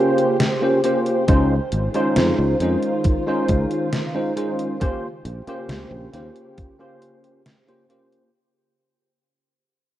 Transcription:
Already playing: C#3 A#3 C#4 F4 G4 C5
0.18 closed hi-hat
0.40 snare, closed hi-hat
0.61 A#3 C#4 F4 G4 C5
0.84 A#3 C#4 F4 G4 C5, closed hi-hat
1.06 closed hi-hat
1.28 C#2 D#3 G#3 C#4 D#4 F4 C5, kick, closed hi-hat
1.72 G#1, closed hi-hat
1.94 G#3 C#4 D#4 F4 C5, closed hi-hat
2.16 F2, snare, closed hi-hat
2.39 C#2
2.60 F2 G#3 C#4 D#4 F4 C5, closed hi-hat
2.83 closed hi-hat
3.04 kick, closed hi-hat
3.27 G#3 C#4 D#4 F4 C5
3.48 C#2, kick, closed hi-hat
3.71 closed hi-hat
3.93 snare, closed hi-hat
4.14 G#3 C#4 D#4 F4 C5
4.36 G#3 C#4 D#4 F4 C5, closed hi-hat
4.59 closed hi-hat
4.80 C#3 A#3 C#4 F4 G4 C5, kick, closed hi-hat
5.25 A#1, closed hi-hat
5.47 A#3 C#4 F4 G4 C5, muted fretless electric bass stroke, closed hi-hat
5.69 C#2, snare, closed hi-hat
5.91 A#1
6.12 D#2 A#3 C#4 F4 G4 C5, snare, closed hi-hat
6.36 closed hi-hat
6.58 kick, closed hi-hat
6.79 A#3 C#4 F4 G4 C5
7.02 closed hi-hat
7.24 closed hi-hat
7.46 snare, closed hi-hat
7.67 A#3 C#4 F4 G4 C5, closed hi-hat
7.89 A#3 C#4 F4 G4 C5, closed hi-hat
8.12 closed hi-hat

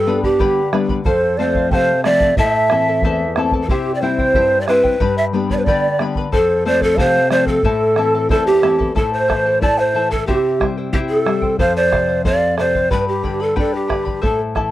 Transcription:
Already playing: G2 A4
0.07 G3 B3 D4 B4 D5 G5 B5
0.23 G4 B4 D5 B5, bombo low
0.39 D3 G4 B4 D5 G5 B5, bombo low
0.73 G3 B3 D4 B4 D5 G5 B5, bombo rim
0.89 B4 D5 B5, bombo low
1.05 F2 A4 C5 F5, bombo low
1.37 F3 A3 C4 A4 C5 D5 F5
1.55 C5 F5, bombo low
1.70 C3 A4 C5 F5 G5, bombo low
1.75 F5
2.04 F3 A3 C4 A4 C5 D5 E5 F5, bombo rim
2.20 C5 F5, bombo low
2.37 A2 E4 A4 C5 E5 A5, bombo low
2.70 E3 A3 C4 E4 A4 E5 A5, bombo rim
2.88 E4 A4 A5
3.02 E2 E4 A4 C5 E5 A5, bombo low
3.36 E3 A3 C4 E4 A4 E5 A5, bombo rim
3.52 E4 A4 A5, bombo low
3.62 A4
3.68 C3 E4 G4 C5 E5 G5, bombo low
3.94 D5
4.01 G3 C4 E4 C5 E5 G5
4.18 E4 C5 G5, bombo low
4.34 G2 E4 G4 C5 E5 G5, bombo low
4.61 D5
4.68 G3 C4 E4 B4 C5 E5 G5, bombo rim
4.84 E4 C5 G5, bombo low
5.00 G2 G4 B4 D5 G5 B5, bombo low
5.18 E5
5.33 G3 B3 D4 B4 D5 G5 B5
5.50 B4 D5 B5, bombo low
5.57 B4 C5
5.65 D3 G4 B4 D5 G5 B5, bombo low
5.99 G3 B3 D4 B4 D5 G5 B5, bombo rim
6.15 B4 D5 B5, bombo low
6.32 F2 A4 C5 F5, bombo low
6.65 F3 A3 C4 A4 C5 D5 F5
6.81 A4 C5 F5, bombo low
6.97 C3 A4 C5 F5, bombo low
7.30 F3 A3 C4 A4 C5 D5 F5, bombo rim
7.46 A4 C5 F5, bombo low
7.63 A2 E4 A4 C5 E5 A5, bombo low
7.96 E3 A3 C4 E4 A4 E5 A5, bombo rim
8.15 E4 A4 A5
8.29 E2 E4 A4 C5 E5 A5, bombo low
8.47 G4
8.62 E3 A3 C4 E4 A4 E5 A5, bombo rim
8.79 E4 A4 A5, bombo low
8.95 A2 E4 A4 C5 E5 A5, bombo low
9.13 C5
9.28 E3 E4 A4 E5 A5, bombo rim, bombo low
9.46 E4 A4 A5
9.61 E4 A4 C5 D5 E5 A5, bombo low
9.79 C5
9.94 E3 E4 A4 E5 A5
10.11 E4 A4 A5, bombo low
10.27 C3 E4 G4 C5 E5 G5, bombo low
10.60 G3 E4 C5 E5 G5, bombo rim, bombo low
10.77 E4 C5 G5
10.93 E4 G4 C5 E5 G5, bombo low
11.09 A4
11.26 G3 E4 C5 E5 G5, bombo rim
11.42 E4 C5 G5, bombo low
11.59 F2 A4 C5 F5, bombo low
11.76 C5 D5
11.91 C3 A4 C5 F5, bombo rim, bombo low
12.09 C5 F5
12.25 C4 A4 C5 D5 F5, bombo low
12.57 C3 A4 C5 D5 F5, bombo rim
12.75 C5 F5, bombo low
12.91 G2 G4 B4 D5 G5 B5, bombo low
13.08 G4
13.23 D3 B4 D5 G5 B5, bombo low
13.40 A4 B4 D5 B5
13.56 D4 G4 A4 B4 D5 G5 B5, bombo low
13.74 G4
13.88 D3 B4 D5 G5 B5, bombo rim, bombo low
14.05 B4 D5 B5, bombo low
14.22 A2 E4 A4 C5 E5 A5, bombo low
14.55 E3 E4 A4 E5 A5, bombo rim, bombo low

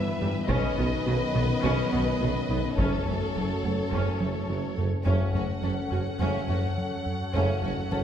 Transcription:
Already playing: G2 E3 G3 B3 E4 B4 E5
0.20 G1 G2 G3
0.48 B1 F#2 B2 D#3 F#3 B3 C#4 B4 D#5, taiko
0.77 B1 B2 B3 D#4
1.06 B1 B2 F#3 B3 F#4
1.34 B1 B2 B3 B4
1.63 B1 B2 B3 C#4
1.92 B1 B2 B3 F#4
2.21 B1 B2 F#3 B3 F#4
2.49 B1 B2 B3 D#4
2.77 F#1 F#2 F#3 A3 C#4 A4 C#5, taiko
3.06 F#1 F#2 A3
3.35 F#1 F#2 F#3 C#4
3.63 F#1 F#2 A3 F#4
3.92 F#1 F#2 F#3 C#4
4.20 F#1 F#2 F#3 A3 C#4
4.49 F#1 F#2 F#3 C#4
4.77 F#1 F#2 A3
5.06 F#1 F#2 C#3 F#3 A3 C#4 A4 C#5 F#5, taiko
5.34 F#1 F#2 A3 C#4 F#4
5.63 F#1 F#2 F#3 C#4 A4
5.91 F#1 F#2 C#4 F#4
6.20 F#1 F#2 C#3 F#3 A3 C#4
6.49 F#1 F#2 A3 C#4 F#4
6.78 F#3
7.06 F#2
7.33 F#1 F#2 C#3 F#3 A3 C#4
7.62 F#1 F#2 A3 C#4 F#4
7.91 F#1 F#2 F#3 C#4 A4

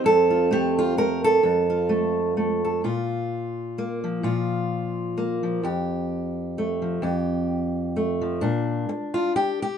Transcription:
Already playing: C4
0.04 F2 A4
0.30 F4
0.51 A3 G4
0.79 F4
0.97 A3 A#4
1.24 A4
1.43 F2
1.70 F4
1.89 A3
2.37 A3
2.64 A4
2.84 A#2 F4
3.78 A#3
4.04 F3
4.23 A#2 F4
5.18 A#3
5.43 F3
5.63 F2 G4
6.58 A3
6.82 F3
7.02 F2 G4
7.96 A3
8.21 F3
8.41 A#2 D4
8.89 muted steel-string acoustic guitar stroke
9.14 F4
9.36 G4, muted steel-string acoustic guitar stroke
9.62 G4

